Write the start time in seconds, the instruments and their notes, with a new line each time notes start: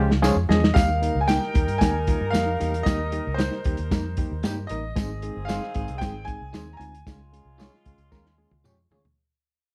Already playing: fingered electric bass C#2, reed electric piano F3 G#3 C#4 F4 G4, grand piano F4
0.11 snare
0.22 reed electric piano F3 G#3 C#4 F4 G#4, clean electric guitar F4 G#4 C#5, snare, tambourine
0.36 fingered electric bass F2
0.49 fingered electric bass E2, reed electric piano F3 G#3 C#4 F4 G#4, grand piano D#5, snare
0.64 snare
0.74 fingered electric bass D#2, reed electric piano G3 A#3 D#4 G4, horn section G3 D#4 A#4, grand piano F5, kick, snare, closed hi-hat, tambourine
1.02 reed electric piano G3 A#3 D#4 A#4, closed hi-hat
1.15 fingered electric bass C#2
1.21 grand piano G#5
1.28 reed electric piano G3 A#3 D#4 G4, clean electric guitar A#3 D#4 G4, grand piano G5, snare, closed hi-hat, tambourine
1.43 snare
1.54 fingered electric bass D#2, reed electric piano G3 A#3 D#4 G4, kick, closed hi-hat
1.68 fingered electric bass G2, closed hi-hat
1.78 fingered electric bass D#2, reed electric piano G3 A#3 D#4 A#4, grand piano G#5, kick, snare, closed hi-hat
1.82 tambourine
2.07 reed electric piano G3 A#3 D#4 F4, kick, closed hi-hat
2.21 fingered electric bass G2
2.31 reed electric piano G3 A#3 D#4 A#4, clean electric guitar A#3 D#4, grand piano F5, closed hi-hat
2.35 fingered electric bass F2, clean electric guitar G4, snare, tambourine
2.60 fingered electric bass E2, reed electric piano G3 A#3 D#4 G4, closed hi-hat
2.74 closed hi-hat
2.83 fingered electric bass D#2, reed electric piano G3 A#3 D#4 G4, grand piano D#5, kick, snare, closed hi-hat
2.87 tambourine
3.12 reed electric piano G3 A#3 D#4 G4, closed hi-hat
3.27 fingered electric bass C#2
3.34 clean electric guitar A#3 D#4, grand piano C5
3.38 reed electric piano G3 A#3 D#4 G4, clean electric guitar G4, snare, closed hi-hat, tambourine
3.52 snare
3.64 fingered electric bass D#2, reed electric piano G3 A#3 D#4 G4, kick, closed hi-hat
3.77 fingered electric bass D#2, closed hi-hat
3.91 fingered electric bass F2, reed electric piano G3 A#3 D#4 A#4, kick, snare, closed hi-hat, tambourine
4.17 reed electric piano G3 A#3 D#4 G4, kick, closed hi-hat
4.32 fingered electric bass D#2
4.43 fingered electric bass G2, reed electric piano G3 A#3 D#4 G4, clean electric guitar A#3 D#4 G4, snare, closed hi-hat, tambourine
4.67 fingered electric bass A1, reed electric piano G3 A#3 D#4 A#4, grand piano D#5, closed hi-hat
4.96 fingered electric bass G#1, horn section D#3 C4 G#4, reed electric piano G#3 C4 D#4 G#4, kick, snare, closed hi-hat, tambourine
5.22 reed electric piano G#3 C4 D#4 G#4, closed hi-hat
5.37 fingered electric bass G1
5.45 reed electric piano G#3 C4 D#4 G#4, clean electric guitar D#4 G#4, grand piano F5, closed hi-hat
5.49 clean electric guitar C5, snare, tambourine
5.63 snare
5.74 fingered electric bass G#1, reed electric piano G#3 C4 D#4 G#4, kick, closed hi-hat
5.88 fingered electric bass C2, closed hi-hat
5.98 fingered electric bass G#1, reed electric piano G#3 C4 D#4 G#4, grand piano G5, kick, snare, closed hi-hat
6.02 tambourine
6.25 reed electric piano G#3 C4 D#4 G#4, grand piano G#5, kick, closed hi-hat
6.41 fingered electric bass C2
6.53 fingered electric bass D#2, reed electric piano G#3 C4 D#4 G#4, clean electric guitar D#4 G#4 C5, snare, closed hi-hat, tambourine
6.73 grand piano G#5 A#5
6.79 fingered electric bass D2, reed electric piano G#3 C4 D#4 F4, closed hi-hat
6.95 closed hi-hat
7.07 fingered electric bass C#2, horn section C#3 G#3 F4, reed electric piano G#3 C#4 F4 G#4, kick, snare, closed hi-hat, tambourine
7.33 reed electric piano G#3 C#4 F4 G#4, closed hi-hat
7.45 fingered electric bass C2
7.58 reed electric piano G#3 C#4 F4 G#4, clean electric guitar F4 G#4 C#5, snare, closed hi-hat, tambourine
7.74 snare
7.85 fingered electric bass C#2, reed electric piano G#3 C#4 F4 G#4, kick, closed hi-hat
7.98 fingered electric bass C#2, closed hi-hat
8.12 fingered electric bass D#2, reed electric piano G#3 C#4 F4 A#4, kick, snare, tambourine
8.26 snare
8.38 reed electric piano G#3 C#4 F4 G#4
8.51 fingered electric bass C#2, high tom
8.64 fingered electric bass F2, reed electric piano G#3 C#4 F4 G4, clean electric guitar F4 G#4 C#5, mid tom, tambourine
8.91 fingered electric bass D2, reed electric piano G#3 C#4 F4 G#4, clean electric guitar F4 G#4 C#5, floor tom
9.05 floor tom